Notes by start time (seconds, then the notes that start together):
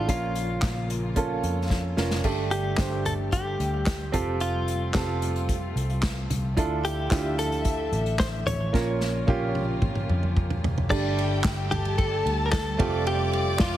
Already playing: F3
0.07 A#1 A#2 C#3 A#3 C#4 F4 A#4, kick, closed hi-hat
0.35 closed hi-hat
0.62 A#1, kick, snare, clap, closed hi-hat
0.90 closed hi-hat
1.16 A#3 C#4 F4 A4, kick, closed hi-hat
1.43 F2, closed hi-hat
1.70 kick, snare
1.97 F1 A#3 C#4 F4 A#4, snare
2.11 snare
2.24 G1 G2 D3 G3 A3 D4 G4 A4, kick, crash
2.51 G4, closed hi-hat
2.77 G1 A3 D4 G4 C5, kick, snare, clap, closed hi-hat
3.05 A4, closed hi-hat, floor tom
3.32 G4, kick, closed hi-hat
3.60 D2, closed hi-hat
3.86 kick, snare, clap, closed hi-hat
4.12 F1 C3 C4 F4 G4 A4, kick, closed hi-hat, floor tom
4.40 F4, closed hi-hat
4.68 closed hi-hat
4.94 F1 C4 F4 G4 A4, kick, snare, clap, closed hi-hat
5.22 closed hi-hat
5.36 closed hi-hat
5.49 kick, closed hi-hat
5.76 C2, closed hi-hat
5.90 closed hi-hat
6.03 kick, snare, clap, closed hi-hat
6.30 C2, closed hi-hat, floor tom
6.57 D2 D3 F3 D4 E4 F4 A4 E5, kick, closed hi-hat
6.85 G4, closed hi-hat
7.11 D2 D4 E4 F4 G4, kick, snare, clap, closed hi-hat
7.39 A4, closed hi-hat
7.52 closed hi-hat
7.65 kick, closed hi-hat
7.92 A1, closed hi-hat
8.06 closed hi-hat
8.19 C5, kick, snare, clap, closed hi-hat
8.46 A1 C#5, closed hi-hat, floor tom
8.73 A#1 A#2 C#3 A#3 C#4 F4 A#4, kick, snare
9.01 snare
9.27 A#1 A#3 C#4 F4 G4, kick, high tom
9.55 high tom
9.82 kick, mid tom
9.95 mid tom
10.09 F2, mid tom
10.23 mid tom
10.37 kick, mid tom
10.50 floor tom
10.63 F1, floor tom
10.78 floor tom
10.90 G1 G2 D3 G3 A3 D4 G4 A4 D5 G5, kick, crash
11.18 ride
11.44 G1, kick, snare, clap, ride
11.71 G4 A4 A5, floor tom, ride
11.85 ride
11.98 A4, kick, ride
12.26 D2, ride
12.46 A#4
12.52 A4, kick, snare, clap, ride
12.78 F1 C3 A3 C4 F4 G4 A4 D5 D6, kick, floor tom, ride
13.07 G4, ride
13.33 ride
13.59 F1 F4, kick, snare, clap, ride